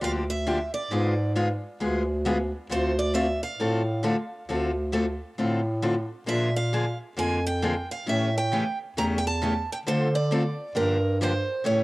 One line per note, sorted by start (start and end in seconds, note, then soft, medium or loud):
0.01 0.73 D2 medium
0.01 0.23 D3 medium
0.01 0.23 F3 medium
0.01 0.23 A#3 medium
0.01 0.23 D4 medium
0.01 0.23 G4 medium
0.01 0.11 F5 loud
0.30 0.73 E5 medium
0.47 0.58 D3 medium
0.47 0.58 F3 medium
0.47 0.58 A#3 medium
0.47 0.58 D4 medium
0.47 0.58 G4 medium
0.74 1.32 D5 medium
0.91 1.63 G#2 medium
0.91 1.12 D3 medium
0.91 1.12 G#3 medium
0.91 1.13 B3 medium
0.91 1.13 F4 medium
0.91 1.13 G#4 medium
1.36 1.47 D3 medium
1.36 1.47 G#3 medium
1.36 1.47 B3 medium
1.36 1.47 F4 medium
1.36 1.48 G#4 medium
1.80 2.53 D2 medium
1.80 2.02 D3 medium
1.80 2.02 G#3 medium
1.80 2.02 B3 medium
1.80 2.02 F4 medium
1.80 2.02 G#4 medium
2.25 2.36 D3 medium
2.25 2.37 G#3 medium
2.25 2.37 B3 loud
2.25 2.37 F4 medium
2.25 2.37 G#4 medium
2.69 3.42 D2 loud
2.69 2.91 D3 medium
2.69 2.91 A3 medium
2.69 2.92 C4 medium
2.69 2.92 F4 medium
2.69 2.92 A4 medium
2.69 2.97 C5 medium
2.99 3.14 D5 medium
3.14 3.25 D3 medium
3.14 3.26 A3 medium
3.14 3.26 C4 medium
3.14 3.26 F4 loud
3.14 3.26 A4 medium
3.14 3.41 E5 loud
3.43 5.79 F5 medium
3.59 4.12 A2 medium
3.59 3.81 D3 medium
3.59 3.81 A3 medium
3.59 3.81 C4 medium
3.59 3.81 F4 medium
3.59 3.81 A4 medium
4.03 4.15 D3 medium
4.03 4.15 A3 medium
4.03 4.15 C4 medium
4.03 4.15 F4 medium
4.03 4.15 A4 medium
4.48 5.20 D2 medium
4.48 4.70 D3 medium
4.48 4.70 A3 medium
4.48 4.70 C4 medium
4.48 4.71 F4 medium
4.48 4.71 A4 medium
4.92 5.04 D3 medium
4.92 5.05 A3 medium
4.92 5.04 C4 medium
4.92 5.05 F4 medium
4.92 5.05 A4 medium
5.38 6.09 A2 medium
5.38 5.59 D3 medium
5.38 5.59 A3 medium
5.38 5.60 C4 medium
5.38 5.60 F4 medium
5.38 5.60 A4 medium
5.82 5.94 D3 medium
5.82 5.94 A3 medium
5.82 5.94 C4 medium
5.82 5.94 F4 medium
5.82 5.94 A4 medium
6.26 6.99 A#2 medium
6.26 6.48 D3 medium
6.26 6.49 F3 medium
6.26 6.48 A#3 medium
6.26 6.49 D4 medium
6.26 6.49 G#4 medium
6.26 6.56 E5 medium
6.56 6.98 F5 loud
6.73 6.84 D3 medium
6.73 6.84 F3 medium
6.73 6.84 A#3 medium
6.73 6.84 D4 medium
6.73 6.84 G#4 medium
7.17 7.89 F2 medium
7.17 7.38 D3 medium
7.17 7.38 F3 medium
7.17 7.38 A#3 medium
7.17 7.38 D4 medium
7.17 7.39 G#4 medium
7.17 7.46 G#5 medium
7.47 7.91 G5 loud
7.62 7.73 D3 medium
7.62 7.73 F3 medium
7.62 7.73 A#3 medium
7.62 7.74 D4 medium
7.62 7.74 G#4 medium
7.91 8.08 F5 medium
8.06 8.60 A2 medium
8.06 8.28 C#3 medium
8.06 8.28 E3 medium
8.06 8.28 A3 medium
8.06 8.28 C#4 medium
8.06 8.28 G4 medium
8.06 8.37 E5 medium
8.38 8.78 G5 medium
8.52 8.63 C#3 medium
8.52 8.63 E3 medium
8.52 8.63 A3 medium
8.52 8.63 C#4 medium
8.52 8.63 G4 medium
8.96 9.68 E2 medium
8.96 9.18 C#3 medium
8.96 9.18 E3 medium
8.96 9.18 A3 medium
8.96 9.18 C#4 medium
8.96 9.18 G4 medium
8.96 9.03 A#5 loud
9.18 9.25 G5 medium
9.27 9.71 A5 loud
9.42 9.52 C#3 medium
9.42 9.53 E3 medium
9.42 9.53 A3 medium
9.42 9.53 C#4 medium
9.42 9.53 G4 loud
9.72 9.77 G5 medium
9.86 10.57 D3 medium
9.86 10.07 D3 medium
9.86 10.07 A3 medium
9.86 10.07 C4 medium
9.86 10.08 F4 medium
9.86 10.08 A4 medium
9.86 10.15 C5 medium
10.15 10.76 D5 medium
10.31 10.42 D3 medium
10.31 10.42 A3 medium
10.31 10.42 C4 medium
10.31 10.42 F4 medium
10.31 10.42 A4 medium
10.75 11.47 G2 medium
10.75 10.96 D3 medium
10.75 10.96 F3 medium
10.75 10.96 A#3 medium
10.75 10.97 D4 medium
10.75 10.97 G4 medium
10.75 11.17 A#4 medium
11.21 11.31 D3 medium
11.21 11.32 F3 medium
11.21 11.32 A#3 loud
11.21 11.32 D4 medium
11.21 11.32 G4 medium
11.21 11.66 C5 medium
11.64 11.84 A2 medium
11.64 11.84 C#3 medium
11.64 11.84 E3 medium
11.64 11.84 A3 medium
11.64 11.84 C#4 medium
11.64 11.84 G4 medium
11.64 11.84 C#5 medium